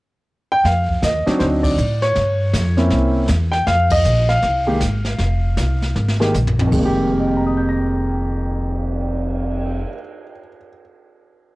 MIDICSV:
0, 0, Header, 1, 6, 480
1, 0, Start_track
1, 0, Key_signature, -4, "minor"
1, 0, Tempo, 378310
1, 816, Time_signature, 4, 2, 24, 8
1, 5137, Tempo, 382166
1, 14562, End_track
2, 0, Start_track
2, 0, Title_t, "Grand piano"
2, 0, Program_c, 0, 0
2, 656, Note_on_c, 0, 79, 99
2, 827, Note_off_c, 0, 79, 0
2, 833, Note_on_c, 0, 77, 77
2, 1317, Note_off_c, 0, 77, 0
2, 1320, Note_on_c, 0, 75, 78
2, 1603, Note_on_c, 0, 62, 66
2, 1611, Note_on_c, 0, 54, 66
2, 1613, Note_on_c, 0, 60, 59
2, 1613, Note_on_c, 0, 63, 76
2, 1766, Note_on_c, 0, 72, 81
2, 1800, Note_off_c, 0, 75, 0
2, 1836, Note_off_c, 0, 72, 0
2, 2071, Note_on_c, 0, 74, 69
2, 2219, Note_off_c, 0, 62, 0
2, 2223, Note_off_c, 0, 54, 0
2, 2224, Note_off_c, 0, 60, 0
2, 2224, Note_off_c, 0, 63, 0
2, 2567, Note_on_c, 0, 73, 91
2, 2570, Note_off_c, 0, 74, 0
2, 3473, Note_off_c, 0, 73, 0
2, 3517, Note_on_c, 0, 61, 63
2, 3519, Note_on_c, 0, 58, 58
2, 3525, Note_on_c, 0, 60, 63
2, 3527, Note_on_c, 0, 64, 69
2, 4137, Note_off_c, 0, 61, 0
2, 4138, Note_off_c, 0, 58, 0
2, 4141, Note_off_c, 0, 60, 0
2, 4142, Note_off_c, 0, 64, 0
2, 4462, Note_on_c, 0, 79, 99
2, 4632, Note_off_c, 0, 79, 0
2, 4657, Note_on_c, 0, 77, 95
2, 4968, Note_on_c, 0, 75, 100
2, 4975, Note_off_c, 0, 77, 0
2, 5438, Note_on_c, 0, 77, 94
2, 5460, Note_off_c, 0, 75, 0
2, 5914, Note_on_c, 0, 51, 56
2, 5924, Note_on_c, 0, 56, 56
2, 5925, Note_on_c, 0, 58, 55
2, 5925, Note_on_c, 0, 67, 63
2, 6072, Note_off_c, 0, 51, 0
2, 6076, Note_off_c, 0, 56, 0
2, 6077, Note_off_c, 0, 58, 0
2, 6077, Note_off_c, 0, 67, 0
2, 7838, Note_on_c, 0, 51, 63
2, 7840, Note_on_c, 0, 56, 60
2, 7841, Note_on_c, 0, 58, 59
2, 7848, Note_on_c, 0, 67, 64
2, 7959, Note_off_c, 0, 77, 0
2, 7994, Note_off_c, 0, 51, 0
2, 7994, Note_off_c, 0, 56, 0
2, 7995, Note_off_c, 0, 58, 0
2, 7999, Note_off_c, 0, 67, 0
2, 8348, Note_on_c, 0, 41, 59
2, 8431, Note_on_c, 0, 51, 53
2, 8506, Note_on_c, 0, 56, 56
2, 8587, Note_on_c, 0, 58, 51
2, 8658, Note_on_c, 0, 67, 69
2, 8991, Note_on_c, 0, 70, 39
2, 9084, Note_on_c, 0, 75, 43
2, 9187, Note_on_c, 0, 79, 34
2, 9305, Note_on_c, 0, 82, 38
2, 9425, Note_on_c, 0, 87, 34
2, 9563, Note_on_c, 0, 91, 29
2, 9708, Note_on_c, 0, 94, 31
2, 12297, Note_off_c, 0, 41, 0
2, 12380, Note_off_c, 0, 51, 0
2, 12454, Note_off_c, 0, 56, 0
2, 12536, Note_off_c, 0, 58, 0
2, 12607, Note_off_c, 0, 67, 0
2, 12889, Note_off_c, 0, 70, 0
2, 12982, Note_off_c, 0, 75, 0
2, 13085, Note_off_c, 0, 79, 0
2, 13203, Note_off_c, 0, 82, 0
2, 13324, Note_off_c, 0, 87, 0
2, 13461, Note_off_c, 0, 91, 0
2, 13606, Note_off_c, 0, 94, 0
2, 14562, End_track
3, 0, Start_track
3, 0, Title_t, "Upright bass"
3, 0, Program_c, 1, 32
3, 809, Note_on_c, 1, 41, 61
3, 1277, Note_off_c, 1, 41, 0
3, 1296, Note_on_c, 1, 39, 77
3, 1582, Note_off_c, 1, 39, 0
3, 1784, Note_on_c, 1, 38, 75
3, 2244, Note_off_c, 1, 38, 0
3, 2260, Note_on_c, 1, 45, 78
3, 2722, Note_off_c, 1, 45, 0
3, 2747, Note_on_c, 1, 43, 65
3, 3205, Note_off_c, 1, 43, 0
3, 3219, Note_on_c, 1, 41, 79
3, 3681, Note_off_c, 1, 41, 0
3, 3693, Note_on_c, 1, 36, 70
3, 4159, Note_off_c, 1, 36, 0
3, 4174, Note_on_c, 1, 40, 88
3, 4641, Note_off_c, 1, 40, 0
3, 4656, Note_on_c, 1, 41, 76
3, 5123, Note_off_c, 1, 41, 0
3, 5137, Note_on_c, 1, 34, 78
3, 5600, Note_off_c, 1, 34, 0
3, 5617, Note_on_c, 1, 36, 63
3, 6080, Note_off_c, 1, 36, 0
3, 6100, Note_on_c, 1, 32, 70
3, 6561, Note_off_c, 1, 32, 0
3, 6574, Note_on_c, 1, 29, 72
3, 7038, Note_off_c, 1, 29, 0
3, 7054, Note_on_c, 1, 36, 78
3, 7518, Note_off_c, 1, 36, 0
3, 7529, Note_on_c, 1, 32, 68
3, 7997, Note_off_c, 1, 32, 0
3, 8019, Note_on_c, 1, 34, 73
3, 8482, Note_off_c, 1, 34, 0
3, 8492, Note_on_c, 1, 29, 77
3, 12390, Note_off_c, 1, 29, 0
3, 14562, End_track
4, 0, Start_track
4, 0, Title_t, "Cymbal swell"
4, 8799, Note_on_c, 9, 59, 39
4, 12234, Note_off_c, 9, 59, 0
4, 14562, End_track
5, 0, Start_track
5, 0, Title_t, "Muted upright bass strokes"
5, 1611, Note_on_c, 9, 29, 32
5, 1737, Note_off_c, 9, 29, 0
5, 14562, End_track
6, 0, Start_track
6, 0, Title_t, "Drums"
6, 823, Note_on_c, 9, 25, 38
6, 823, Note_on_c, 9, 38, 37
6, 950, Note_off_c, 9, 38, 0
6, 1128, Note_on_c, 9, 36, 37
6, 1254, Note_off_c, 9, 36, 0
6, 1302, Note_on_c, 9, 38, 59
6, 1303, Note_on_c, 9, 44, 49
6, 1429, Note_off_c, 9, 38, 0
6, 1430, Note_off_c, 9, 44, 0
6, 1614, Note_on_c, 9, 38, 34
6, 1741, Note_off_c, 9, 38, 0
6, 1776, Note_off_c, 9, 25, 0
6, 1776, Note_on_c, 9, 25, 40
6, 1776, Note_on_c, 9, 38, 35
6, 1903, Note_off_c, 9, 38, 0
6, 2082, Note_on_c, 9, 36, 72
6, 2083, Note_on_c, 9, 51, 65
6, 2209, Note_off_c, 9, 36, 0
6, 2210, Note_off_c, 9, 51, 0
6, 2259, Note_on_c, 9, 44, 46
6, 2386, Note_off_c, 9, 44, 0
6, 2562, Note_on_c, 9, 38, 37
6, 2689, Note_off_c, 9, 38, 0
6, 2734, Note_off_c, 9, 25, 0
6, 2734, Note_on_c, 9, 25, 42
6, 2734, Note_on_c, 9, 38, 38
6, 2861, Note_off_c, 9, 38, 0
6, 3215, Note_on_c, 9, 38, 58
6, 3217, Note_on_c, 9, 44, 63
6, 3342, Note_off_c, 9, 38, 0
6, 3344, Note_off_c, 9, 44, 0
6, 3521, Note_on_c, 9, 38, 32
6, 3648, Note_off_c, 9, 38, 0
6, 3684, Note_off_c, 9, 25, 0
6, 3684, Note_on_c, 9, 25, 42
6, 3684, Note_on_c, 9, 38, 36
6, 3811, Note_off_c, 9, 38, 0
6, 4159, Note_on_c, 9, 38, 47
6, 4161, Note_on_c, 9, 44, 53
6, 4286, Note_off_c, 9, 38, 0
6, 4288, Note_off_c, 9, 44, 0
6, 4478, Note_on_c, 9, 38, 37
6, 4605, Note_off_c, 9, 38, 0
6, 4653, Note_off_c, 9, 25, 0
6, 4653, Note_on_c, 9, 25, 47
6, 4653, Note_on_c, 9, 38, 41
6, 4780, Note_off_c, 9, 38, 0
6, 4951, Note_on_c, 9, 51, 72
6, 4956, Note_on_c, 9, 36, 68
6, 5078, Note_off_c, 9, 51, 0
6, 5083, Note_off_c, 9, 36, 0
6, 5128, Note_on_c, 9, 44, 52
6, 5254, Note_off_c, 9, 44, 0
6, 5437, Note_on_c, 9, 38, 31
6, 5563, Note_off_c, 9, 38, 0
6, 5609, Note_off_c, 9, 25, 0
6, 5609, Note_on_c, 9, 25, 39
6, 5609, Note_on_c, 9, 38, 36
6, 5734, Note_off_c, 9, 38, 0
6, 6088, Note_on_c, 9, 38, 50
6, 6089, Note_on_c, 9, 44, 54
6, 6214, Note_off_c, 9, 38, 0
6, 6215, Note_off_c, 9, 44, 0
6, 6392, Note_on_c, 9, 38, 38
6, 6518, Note_off_c, 9, 38, 0
6, 6564, Note_off_c, 9, 25, 0
6, 6564, Note_on_c, 9, 25, 45
6, 6564, Note_on_c, 9, 38, 39
6, 6690, Note_off_c, 9, 38, 0
6, 7049, Note_on_c, 9, 38, 50
6, 7051, Note_on_c, 9, 44, 54
6, 7175, Note_off_c, 9, 38, 0
6, 7176, Note_off_c, 9, 44, 0
6, 7364, Note_on_c, 9, 38, 34
6, 7490, Note_off_c, 9, 38, 0
6, 7534, Note_on_c, 9, 38, 35
6, 7660, Note_off_c, 9, 38, 0
6, 7692, Note_on_c, 9, 38, 41
6, 7818, Note_off_c, 9, 38, 0
6, 7857, Note_on_c, 9, 38, 62
6, 7905, Note_off_c, 9, 25, 0
6, 7983, Note_off_c, 9, 38, 0
6, 8019, Note_on_c, 9, 47, 47
6, 8020, Note_on_c, 9, 44, 50
6, 8145, Note_off_c, 9, 47, 0
6, 8146, Note_off_c, 9, 44, 0
6, 8181, Note_on_c, 9, 43, 62
6, 8307, Note_off_c, 9, 43, 0
6, 8332, Note_on_c, 9, 43, 71
6, 8457, Note_off_c, 9, 43, 0
6, 8491, Note_on_c, 9, 36, 54
6, 8492, Note_on_c, 9, 49, 57
6, 8617, Note_off_c, 9, 36, 0
6, 8617, Note_off_c, 9, 49, 0
6, 14562, End_track
0, 0, End_of_file